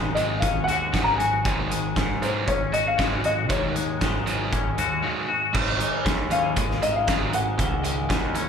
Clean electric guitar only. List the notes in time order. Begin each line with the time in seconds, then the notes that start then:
Already playing: D#3 G#3 F#4
0.17 G#3
0.42 C#4
0.69 F#4
0.94 G#3
1.19 F#4
1.46 D#3
1.70 G#3
1.97 D#3
2.22 G#3
2.48 C#4
2.73 F#4
2.99 G#3
3.25 F#4
3.51 D#3
3.76 G#3
4.01 D#3
4.27 G#3
4.53 C#4
4.79 F#4
5.03 G#3
5.28 F#4
5.54 D#3
5.79 G#3
6.05 D#3
6.31 C#4
6.57 G#3
6.82 D#3
7.08 G#3
7.33 D#3
7.59 D#3
7.85 G#3
8.10 D#3
8.35 C#4